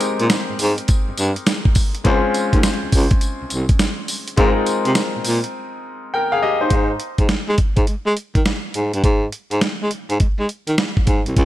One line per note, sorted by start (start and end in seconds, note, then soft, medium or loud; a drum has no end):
0.00 2.01 G#3 medium
0.00 2.01 C4 medium
0.00 2.01 D#4 medium
0.00 2.02 G4 medium
0.00 2.02 A#4 medium
0.00 closed hi-hat medium
0.00 tambourine medium
0.20 0.28 A#2 medium
0.20 closed hi-hat medium
0.30 snare loud
0.30 closed hi-hat medium
0.30 tambourine medium
0.50 0.54 G#2 medium
0.59 0.74 G#2 loud
0.59 open hi-hat medium
0.59 tambourine medium
0.78 closed hi-hat medium
0.88 kick medium
0.88 closed hi-hat medium
0.88 tambourine medium
1.08 1.12 G2 medium
1.18 1.32 G2 medium
1.18 closed hi-hat medium
1.18 tambourine medium
1.36 closed hi-hat medium
1.47 snare loud
1.47 closed hi-hat medium
1.47 tambourine medium
1.65 kick loud
1.75 kick medium
1.75 open hi-hat medium
1.75 tambourine medium
1.95 closed hi-hat medium
2.04 2.19 C#2 loud
2.04 4.34 G#3 medium
2.04 4.34 C4 medium
2.04 4.34 C#4 medium
2.04 4.35 F4 medium
2.04 4.35 C5 medium
2.04 kick loud
2.04 closed hi-hat medium
2.34 closed hi-hat medium
2.34 tambourine medium
2.53 2.61 D#2 medium
2.53 kick medium
2.53 closed hi-hat medium
2.63 snare loud
2.63 closed hi-hat medium
2.63 tambourine medium
2.83 2.87 C#2 soft
2.92 3.07 C#2 medium
2.92 kick medium
2.92 open hi-hat medium
2.92 tambourine medium
3.11 kick loud
3.11 closed hi-hat medium
3.21 closed hi-hat medium
3.21 tambourine medium
3.41 3.45 C2 soft
3.50 3.65 C2 medium
3.50 closed hi-hat medium
3.50 tambourine medium
3.69 kick medium
3.69 closed hi-hat medium
3.79 snare loud
3.79 closed hi-hat medium
3.79 tambourine loud
4.08 open hi-hat medium
4.08 tambourine medium
4.28 closed hi-hat medium
4.37 4.52 G#2 loud
4.37 6.37 G#3 medium
4.37 6.38 C4 medium
4.37 6.09 D#4 medium
4.37 6.10 F4 medium
4.37 6.10 A#4 medium
4.37 kick loud
4.37 closed hi-hat medium
4.66 closed hi-hat medium
4.66 tambourine medium
4.85 4.94 C3 medium
4.85 closed hi-hat medium
4.95 snare loud
4.95 closed hi-hat medium
4.95 tambourine medium
5.16 5.20 A#2 soft
5.25 5.40 A#2 medium
5.25 open hi-hat medium
5.25 tambourine medium
5.44 closed hi-hat medium
6.14 6.31 A#4 medium
6.14 6.31 G5 medium
6.32 6.42 G#4 medium
6.32 6.42 F5 medium
6.42 6.60 G4 medium
6.42 6.60 D#5 medium
6.61 6.89 D#4 medium
6.61 6.88 C5 medium
6.70 6.93 G#2 medium
6.70 kick loud
6.70 closed hi-hat medium
7.00 closed hi-hat medium
7.18 7.27 G#2 medium
7.18 kick medium
7.18 closed hi-hat medium
7.29 7.38 G#3 soft
7.29 snare loud
7.29 closed hi-hat medium
7.49 7.56 G#3 medium
7.58 kick medium
7.58 closed hi-hat medium
7.77 7.85 G#2 medium
7.77 kick medium
7.77 closed hi-hat soft
7.87 7.95 G#3 soft
7.87 closed hi-hat medium
8.06 8.14 G#3 medium
8.17 closed hi-hat medium
8.35 8.43 D#3 medium
8.35 kick medium
8.35 closed hi-hat medium
8.46 snare loud
8.46 closed hi-hat medium
8.74 8.89 G#2 medium
8.74 closed hi-hat medium
8.94 9.02 G2 medium
8.94 closed hi-hat medium
9.04 9.26 G#2 medium
9.04 kick loud
9.04 closed hi-hat medium
9.32 closed hi-hat medium
9.51 9.60 G#2 medium
9.51 closed hi-hat medium
9.61 9.70 G#3 soft
9.61 snare loud
9.61 closed hi-hat medium
9.82 9.89 G#3 medium
9.91 closed hi-hat medium
10.10 10.18 G#2 medium
10.10 closed hi-hat medium
10.20 10.28 G#3 soft
10.20 kick medium
10.20 closed hi-hat medium
10.39 10.47 G#3 medium
10.49 closed hi-hat medium
10.67 10.76 D#3 medium
10.67 closed hi-hat medium
10.78 snare loud
10.78 closed hi-hat medium
10.97 kick medium
11.07 11.22 G#2 medium
11.07 kick medium
11.07 closed hi-hat medium
11.26 11.35 C2 medium
11.26 closed hi-hat medium
11.37 11.45 C#2 medium
11.37 kick loud
11.37 closed hi-hat medium